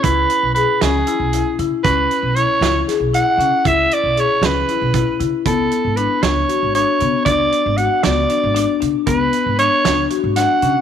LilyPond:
<<
  \new Staff \with { instrumentName = "Soprano saxophone" } { \time 7/8 \key cis \phrygian \tempo 4 = 116 b'4 b'8 gis'4. r8 | b'4 cis''4 r8 fis''4 | e''8 d''8 cis''8 b'4. r8 | a'4 b'8 cis''4 cis''4 |
d''4 fis''8 d''4. r8 | b'4 cis''4 r8 fis''4 | }
  \new Staff \with { instrumentName = "Marimba" } { \time 7/8 \key cis \phrygian e'4 gis'8 cis'8 e'8 e'8 e'8 | cis'4 e'8 e'8 gis'8 e'8 cis'8 | e'4 gis'8 cis'8 e'8 e'8 e'8 | b4 d'8 d'8 fis'8 d'8 b8 |
d'4 fis'8 b8 d'8 d'8 d'8 | b4 d'8 d'8 fis'8 d'8 cis'8 | }
  \new Staff \with { instrumentName = "Upright bass" } { \clef bass \time 7/8 \key cis \phrygian cis,8 r16 b,,8 r16 cis,8 r16 b,,8 r16 cis16 r16 | cis,8 r16 b,,8 r16 cis,8 r16 b,,8 r16 cis16 r16 | cis,8 r16 b,,8 r16 cis,8 r16 b,,8 r16 cis16 r16 | cis,8 r16 gis,,8 r16 cis,8 r16 gis,,8 r16 cis16 r16 |
cis,8 r16 gis,,8 r16 cis,8 r16 gis,,8 r16 cis16 r16 | cis,8 r16 gis,,8 r16 cis,8 r16 gis,,8 r16 cis16 r16 | }
  \new DrumStaff \with { instrumentName = "Drums" } \drummode { \time 7/8 <hh bd>8 hh8 hh8 <hh sn>8 hh8 hh8 hh8 | <hh bd>8 hh8 hh8 <hh sn>8 <hh sn>8 hh8 hh8 | <hh bd>8 hh8 hh8 <hh sn>8 hh8 <hh bd>8 hh8 | <hh bd>8 hh8 hh8 <hh sn>8 hh8 hh8 hh8 |
<hh bd>8 hh8 hh8 <hh sn>8 hh8 hh8 hh8 | <hh bd>8 hh8 hh8 <hh sn>8 hh8 <hh sn>8 hh8 | }
>>